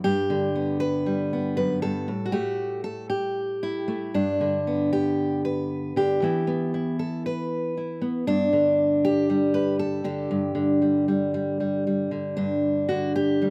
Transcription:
Already playing: G3
0.04 G2 G4
0.30 D3
0.55 B3
0.80 B4
1.06 G3
1.33 B3
1.57 F#2 B4
1.82 G2 A4
2.08 A2
2.26 F#4
2.32 A3 G4
2.84 A4
3.10 G4
3.63 E4
3.88 A3
4.14 G2 D4
4.41 D3
4.67 B3
4.93 G4
5.45 B4
5.96 D3 G4
6.22 E3 B3 E4
6.47 B3
6.74 E4
6.99 A4
7.26 B4
7.77 E4
8.02 B3
8.27 G2 D4
8.53 D3
9.05 G4
9.30 G3
9.54 B4
9.79 A4
10.04 D3 G4
10.31 G2
10.55 D3
10.82 G3
11.08 G3
11.34 G3
11.60 G3
11.87 G3
12.11 D3
12.37 G2 D4
12.89 D3 F#4
13.16 G4
13.42 D2 G3

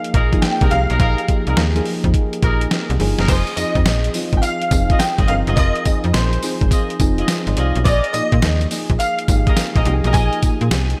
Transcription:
Already playing: F3 A#3 D#4 G#4 F5
0.04 closed hi-hat
0.14 A#1 D#4 G#4 A#4, kick, closed hi-hat
0.33 F3 A#3 D#4 G#4, kick, closed hi-hat
0.42 F3 A#3 D#4 G#4 G5, snare, closed hi-hat
0.61 C2 F3 A#3 D#4 G4 G#4 A#4, kick, closed hi-hat
0.70 C2 F5, closed hi-hat
0.90 B1 D#4 G#4 A#4, closed hi-hat
1.00 A#1 D#4 G#4 A#4, kick, closed hi-hat
1.18 closed hi-hat
1.28 F3 A#3 D#4 G#4, kick, closed hi-hat
1.47 C2 D#4 G#4 A#4, closed hi-hat
1.57 D#2, snare, closed hi-hat
1.75 F3 A#3 D#4 G#4, closed hi-hat
1.85 open hi-hat
2.04 F2, kick, closed hi-hat
2.14 kick, closed hi-hat
2.33 closed hi-hat
2.42 A#1 D#4 G#4 A#4, kick, closed hi-hat
2.61 closed hi-hat
2.71 snare, closed hi-hat
2.90 C2, closed hi-hat
2.99 G1 F3 A#3 D#4 G#4, open hi-hat
3.18 F#1 D#4 G#4 A#4, snare, closed hi-hat
3.28 F1 F4 G#4 C5 D#5, kick, closed hi-hat, crash, tambourine
3.47 closed hi-hat
3.56 F2 F3 C4 D#4 G#4 D#5, closed hi-hat, tambourine
3.75 F2, kick, closed hi-hat
3.85 A#1, snare, closed hi-hat, tambourine
4.04 closed hi-hat
4.14 F3 C4 D#4 F4, open hi-hat, tambourine
4.33 G#1, kick, closed hi-hat
4.37 G5
4.42 F5, closed hi-hat, tambourine
4.62 closed hi-hat
4.71 F1 F3 C4 D#4 G#4, kick, closed hi-hat, tambourine
4.90 F4 G#4 D#5, kick, closed hi-hat
4.99 G5, snare, closed hi-hat, tambourine
5.18 G#1 F4 G#4 D#5, kick, closed hi-hat
5.28 G1 F3 C4 D#4 A#4 F5, closed hi-hat
5.47 F#1 F4 G#4 D#5, closed hi-hat
5.56 F1 F4 G#4 D#5, kick, closed hi-hat, tambourine
5.76 closed hi-hat
5.85 F2 F3 C4 D#4 G#4, kick, closed hi-hat, tambourine
6.04 F2, closed hi-hat
6.13 A#1 C5, snare, closed hi-hat, tambourine
6.33 closed hi-hat
6.43 F3 C4 D#4 G#4, open hi-hat, tambourine
6.61 G#1, kick, closed hi-hat
6.71 F4 G#4 D#5, kick, closed hi-hat, tambourine
6.90 closed hi-hat
7.00 F1 F3 C4 D#4 G#4, kick, closed hi-hat, tambourine
7.18 F4 G#4 D#5, closed hi-hat
7.28 G#4 C5, snare, closed hi-hat, tambourine
7.47 G#1 C5 D#5, closed hi-hat
7.57 C2 F4 G#4 D5 D#5 F5, closed hi-hat
7.76 B1 G#4 C5, closed hi-hat
7.84 A#1 G#4 A#4 D5 D#5, kick, closed hi-hat, tambourine
8.04 closed hi-hat
8.13 A#2 F3 A#3 D#4 G#4 D#5, closed hi-hat, tambourine
8.32 A#2, kick, closed hi-hat
8.42 D#2, snare, closed hi-hat, tambourine
8.61 closed hi-hat
8.71 F3 A#3 D#4 G#4, open hi-hat, tambourine
8.90 A#1, kick, closed hi-hat
8.99 F5, closed hi-hat, tambourine
9.19 closed hi-hat
9.28 G#1 F3 A#3 D#4 G4, kick, closed hi-hat, tambourine
9.36 G#4
9.47 G#4 A#4 D#5, kick, closed hi-hat
9.57 snare, closed hi-hat, tambourine
9.75 A#1 G#4 A#4 D#5, kick, closed hi-hat
9.85 C2 F3 A#3 D#4 G4, closed hi-hat
9.93 G#4
10.04 B1 G#4 A#4 D#5, closed hi-hat
10.13 A#1 G#4 A#4 D#5 G#5, kick, closed hi-hat, tambourine
10.33 closed hi-hat
10.42 A#2 F3 A#3 D#4 G#4, kick, closed hi-hat, tambourine
10.61 A#2, closed hi-hat
10.71 C2, snare, closed hi-hat, tambourine
10.90 closed hi-hat

